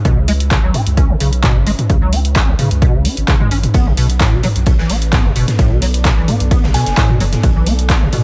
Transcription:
0.00 3.74 C#4 medium
0.00 5.06 B4 medium
0.00 3.74 E5 medium
0.05 0.56 C#2 loud
0.05 0.19 B2 loud
0.05 kick loud
0.05 closed hi-hat soft
0.17 0.26 C#3 loud
0.28 0.32 G#3 loud
0.28 open hi-hat loud
0.40 closed hi-hat medium
0.51 0.58 C#3 medium
0.51 kick loud
0.51 clap loud
0.51 closed hi-hat medium
0.63 0.70 C#2 medium
0.63 0.76 F#3 medium
0.74 0.81 C#4 medium
0.74 mid tom medium
0.74 open hi-hat loud
0.87 1.14 C#2 medium
0.87 closed hi-hat medium
0.97 1.11 C#4 medium
0.97 kick loud
0.97 closed hi-hat medium
1.10 1.16 C#3 loud
1.20 1.49 B1 medium
1.20 1.30 C#3 medium
1.20 open hi-hat loud
1.33 closed hi-hat medium
1.43 1.57 B2 loud
1.43 kick loud
1.43 clap loud
1.43 closed hi-hat soft
1.43 mid tom medium
1.56 1.63 G#1 medium
1.56 1.65 C#3 loud
1.67 1.74 G#1 loud
1.67 1.71 G#3 loud
1.67 open hi-hat loud
1.79 closed hi-hat medium
1.79 mid tom medium
1.90 2.41 C#2 loud
1.90 1.96 C#3 medium
1.90 kick loud
1.90 closed hi-hat soft
2.02 2.14 F#3 medium
2.13 2.19 C#4 loud
2.13 open hi-hat loud
2.25 closed hi-hat medium
2.36 2.50 C#4 medium
2.36 kick loud
2.36 clap loud
2.36 closed hi-hat soft
2.48 2.55 C#2 medium
2.48 2.54 C#3 loud
2.59 2.69 C#3 medium
2.59 mid tom loud
2.59 open hi-hat medium
2.71 2.85 C#2 medium
2.71 closed hi-hat medium
2.82 2.96 B2 loud
2.82 kick loud
2.82 closed hi-hat medium
2.94 3.08 C#2 medium
2.94 3.07 C#3 loud
3.05 3.15 C#4 medium
3.05 open hi-hat loud
3.17 3.24 G#1 medium
3.17 closed hi-hat medium
3.28 3.35 C#3 loud
3.28 kick loud
3.28 clap loud
3.28 closed hi-hat soft
3.40 3.49 G#3 medium
3.40 mid tom loud
3.51 3.66 G#1 medium
3.51 3.58 C#4 medium
3.51 open hi-hat medium
3.63 closed hi-hat medium
3.63 mid tom medium
3.74 4.25 B1 loud
3.74 8.24 B3 medium
3.74 3.88 B3 medium
3.74 kick loud
3.74 closed hi-hat medium
3.74 closed hi-hat soft
3.86 3.92 B2 loud
3.97 4.07 B2 medium
3.97 closed hi-hat medium
3.97 open hi-hat loud
4.10 8.24 A4 medium
4.10 closed hi-hat medium
4.20 4.34 A2 loud
4.20 kick loud
4.20 snare loud
4.20 clap loud
4.20 closed hi-hat medium
4.20 closed hi-hat soft
4.33 4.39 B1 medium
4.33 4.42 B2 loud
4.43 4.48 F#3 loud
4.43 closed hi-hat medium
4.43 mid tom medium
4.43 open hi-hat medium
4.48 7.91 D5 medium
4.56 4.83 B1 medium
4.56 closed hi-hat medium
4.66 4.73 B2 medium
4.66 kick loud
4.66 closed hi-hat medium
4.79 4.91 E3 medium
4.79 snare medium
4.90 5.18 A1 medium
4.90 4.96 B3 loud
4.90 closed hi-hat medium
4.90 open hi-hat loud
5.02 closed hi-hat medium
5.12 5.26 B3 medium
5.12 kick loud
5.12 snare loud
5.12 clap loud
5.12 closed hi-hat soft
5.12 closed hi-hat medium
5.12 mid tom medium
5.25 5.32 F#1 medium
5.25 5.31 B2 loud
5.36 5.44 F#1 loud
5.36 5.46 B2 medium
5.36 closed hi-hat medium
5.36 open hi-hat medium
5.48 snare soft
5.48 closed hi-hat medium
5.48 mid tom medium
5.59 6.10 B1 loud
5.59 5.73 A2 loud
5.59 kick loud
5.59 closed hi-hat soft
5.59 closed hi-hat medium
5.71 5.80 B2 medium
5.82 5.86 F#3 loud
5.82 closed hi-hat medium
5.82 open hi-hat loud
5.94 closed hi-hat medium
6.05 6.12 B2 medium
6.05 kick loud
6.05 snare loud
6.05 clap loud
6.05 closed hi-hat medium
6.05 closed hi-hat soft
6.17 6.24 B1 medium
6.17 6.30 E3 medium
6.28 6.35 B3 loud
6.28 closed hi-hat medium
6.28 mid tom medium
6.28 open hi-hat medium
6.40 6.54 B1 medium
6.40 closed hi-hat medium
6.51 6.65 B3 medium
6.51 kick loud
6.51 closed hi-hat medium
6.63 6.77 B1 medium
6.63 6.69 B2 loud
6.63 snare medium
6.74 6.84 B2 medium
6.74 7.10 G#5 medium
6.74 closed hi-hat medium
6.74 open hi-hat loud
6.86 6.93 F#1 medium
6.86 snare soft
6.86 closed hi-hat medium
6.97 7.11 A2 loud
6.97 kick loud
6.97 snare loud
6.97 clap loud
6.97 closed hi-hat soft
6.97 closed hi-hat medium
7.09 7.19 B2 loud
7.09 mid tom medium
7.20 7.36 F#1 medium
7.20 7.24 F#3 loud
7.20 closed hi-hat medium
7.20 open hi-hat medium
7.33 snare soft
7.33 closed hi-hat medium
7.33 mid tom medium
7.43 7.95 B1 loud
7.43 7.50 B2 medium
7.43 kick loud
7.43 closed hi-hat medium
7.56 7.68 E3 medium
7.67 7.73 B3 loud
7.67 closed hi-hat medium
7.67 open hi-hat loud
7.79 closed hi-hat medium
7.90 8.03 B3 medium
7.90 kick loud
7.90 snare loud
7.90 clap loud
7.90 closed hi-hat medium
8.02 8.09 B1 medium
8.02 8.08 B2 loud
8.12 8.23 B2 medium
8.12 closed hi-hat medium
8.12 mid tom medium
8.12 open hi-hat medium

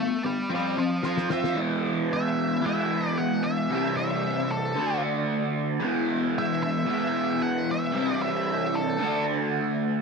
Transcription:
0.00 0.21 G3 medium
0.00 0.21 B3 medium
0.00 0.22 E5 medium
0.00 0.23 A5 loud
0.24 0.48 G3 medium
0.24 0.48 B3 medium
0.24 0.49 D5 medium
0.24 0.50 G5 loud
0.49 0.75 F3 medium
0.49 0.75 C4 loud
0.49 0.75 F4 loud
0.55 0.78 D5 medium
0.55 0.79 G5 medium
0.77 1.01 F3 medium
0.77 1.01 C4 medium
0.77 1.02 C5 medium
0.77 1.04 F5 loud
1.03 1.27 F3 medium
1.03 1.28 C4 loud
1.03 1.29 F4 loud
1.03 1.29 C5 medium
1.03 1.31 F5 loud
1.03 snare medium
1.17 snare medium
1.29 1.54 F3 medium
1.29 1.55 C4 loud
1.29 1.55 F4 loud
1.29 snare loud
1.33 1.57 E5 loud
1.44 snare medium
1.54 2.60 E3 loud
1.54 2.61 G#3 medium
1.58 2.62 B3 loud
1.58 2.63 E4 loud
2.13 2.65 E5 loud
2.61 3.67 E3 medium
2.61 3.68 G#3 medium
2.61 3.69 B3 medium
2.66 3.70 E4 medium
2.66 3.08 E5 loud
3.08 3.19 D5 loud
3.18 3.44 F#5 loud
3.44 3.96 E5 loud
3.70 4.74 C3 medium
3.70 4.74 E3 medium
3.70 4.75 G3 loud
3.70 4.76 C4 loud
3.75 4.77 E4 loud
3.97 4.51 E5 loud
4.51 5.00 A4 medium
4.75 5.79 D3 medium
4.75 5.81 A3 medium
4.79 5.82 D4 loud
4.79 5.82 F#4 loud
5.80 6.85 E3 loud
5.80 6.86 G#3 loud
5.80 6.87 B3 loud
5.85 6.88 E4 loud
6.38 6.62 E5 loud
6.63 7.44 E5 loud
6.86 7.92 E3 medium
6.86 7.93 G#3 medium
6.86 7.93 B3 medium
6.91 7.94 E4 loud
7.42 7.69 F#5 loud
7.71 8.21 E5 loud
7.92 8.98 C3 medium
7.92 8.98 E3 medium
7.92 8.99 G3 loud
7.92 9.00 C4 loud
7.97 9.00 E4 loud
8.22 8.76 E5 loud
8.75 9.24 A4 medium
8.99 10.02 D3 loud
8.99 10.02 A3 loud
8.99 10.02 D4 loud
9.04 10.02 F#4 loud

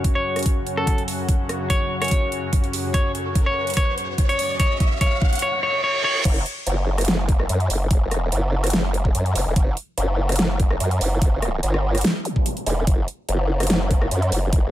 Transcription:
0.00 5.38 F#2 medium
0.00 5.38 C#3 medium
0.00 5.38 C#4 medium
0.00 5.38 F#4 medium
0.00 riser medium
0.04 kick loud
0.04 closed hi-hat medium
0.15 0.40 C#5 medium
0.36 cross-stick soft
0.36 closed hi-hat soft
0.39 closed hi-hat medium
0.43 kick medium
0.43 closed hi-hat medium
0.46 closed hi-hat medium
0.67 closed hi-hat medium
0.77 1.02 A4 medium
0.77 cross-stick soft
0.87 kick medium
0.87 closed hi-hat medium
0.98 closed hi-hat soft
1.08 open hi-hat medium
1.29 kick medium
1.29 closed hi-hat medium
1.49 cross-stick medium
1.49 closed hi-hat medium
1.70 1.95 C#5 medium
1.70 kick loud
1.70 closed hi-hat medium
2.02 2.86 C#5 medium
2.02 cross-stick soft
2.02 closed hi-hat medium
2.04 closed hi-hat medium
2.08 kick medium
2.08 closed hi-hat medium
2.11 closed hi-hat medium
2.32 closed hi-hat medium
2.53 kick loud
2.53 closed hi-hat medium
2.64 closed hi-hat soft
2.73 open hi-hat medium
2.94 3.11 C#5 medium
2.94 kick loud
2.94 closed hi-hat medium
3.15 closed hi-hat medium
3.35 kick loud
3.35 closed hi-hat medium
3.46 3.71 C#5 medium
3.67 closed hi-hat soft
3.70 closed hi-hat medium
3.74 kick loud
3.74 closed hi-hat medium
3.77 3.94 C#5 loud
3.77 closed hi-hat medium
3.98 closed hi-hat medium
4.18 kick loud
4.18 closed hi-hat medium
4.29 4.54 C#5 medium
4.29 closed hi-hat soft
4.39 open hi-hat medium
4.60 4.77 C#5 medium
4.60 kick loud
4.60 closed hi-hat medium
4.80 kick loud
4.80 closed hi-hat medium
5.01 5.18 C#5 loud
5.01 kick loud
5.01 closed hi-hat medium
5.22 kick loud
5.33 closed hi-hat soft
5.35 closed hi-hat medium
5.39 5.59 C#5 loud
5.39 closed hi-hat medium
5.39 reverse cymbal medium
5.63 5.80 C#5 loud
5.84 6.01 C#5 loud
6.04 6.21 C#5 loud
6.25 6.44 F#1 loud
6.25 kick loud
6.25 closed hi-hat medium
6.25 crash loud
6.46 closed hi-hat medium
6.67 7.48 F#1 loud
6.67 closed hi-hat medium
6.98 cross-stick medium
6.98 closed hi-hat medium
7.01 closed hi-hat medium
7.05 snare loud
7.05 closed hi-hat medium
7.08 closed hi-hat medium
7.29 kick loud
7.29 closed hi-hat medium
7.40 cross-stick medium
7.49 7.68 F#2 loud
7.49 closed hi-hat medium
7.60 closed hi-hat soft
7.70 8.13 F#1 medium
7.70 open hi-hat loud
7.91 kick loud
7.91 closed hi-hat medium
8.11 8.30 F1 medium
8.11 cross-stick medium
8.11 closed hi-hat medium
8.32 9.13 F#1 loud
8.32 closed hi-hat medium
8.64 cross-stick medium
8.64 closed hi-hat medium
8.67 closed hi-hat medium
8.70 snare loud
8.70 closed hi-hat medium
8.73 closed hi-hat medium
8.94 closed hi-hat medium
9.05 kick medium
9.15 9.34 F#2 loud
9.15 closed hi-hat medium
9.26 closed hi-hat soft
9.35 9.45 F#1 loud
9.35 open hi-hat loud
9.46 9.55 E1 loud
9.56 9.75 F#1 loud
9.56 kick loud
9.56 closed hi-hat medium
9.77 closed hi-hat medium
9.97 10.79 F#1 loud
9.97 closed hi-hat medium
10.29 cross-stick medium
10.29 closed hi-hat soft
10.32 closed hi-hat medium
10.36 snare loud
10.36 closed hi-hat medium
10.39 closed hi-hat medium
10.60 kick loud
10.60 closed hi-hat medium
10.71 cross-stick medium
10.80 10.99 F#2 loud
10.80 closed hi-hat medium
10.91 closed hi-hat soft
11.01 11.61 F#1 loud
11.01 open hi-hat medium
11.22 kick loud
11.22 closed hi-hat medium
11.42 cross-stick medium
11.42 closed hi-hat medium
11.63 12.03 G1 loud
11.63 closed hi-hat medium
11.74 cross-stick medium
11.95 cross-stick medium
11.95 closed hi-hat soft
11.98 closed hi-hat medium
12.01 snare loud
12.01 closed hi-hat medium
12.04 closed hi-hat medium
12.25 closed hi-hat medium
12.25 zap medium
12.36 kick medium
12.46 closed hi-hat medium
12.57 closed hi-hat soft
12.66 12.86 E1 loud
12.66 open hi-hat medium
12.87 13.06 F#1 loud
12.87 kick loud
12.87 closed hi-hat medium
13.08 closed hi-hat medium
13.29 14.10 F#1 loud
13.29 closed hi-hat medium
13.60 cross-stick medium
13.60 closed hi-hat soft
13.63 closed hi-hat medium
13.67 snare loud
13.67 closed hi-hat medium
13.70 closed hi-hat medium
13.91 kick loud
13.91 closed hi-hat soft
14.02 cross-stick medium
14.11 14.30 F#2 loud
14.11 closed hi-hat medium
14.22 closed hi-hat soft
14.32 14.71 F#1 loud
14.32 open hi-hat medium
14.53 kick loud
14.53 closed hi-hat medium

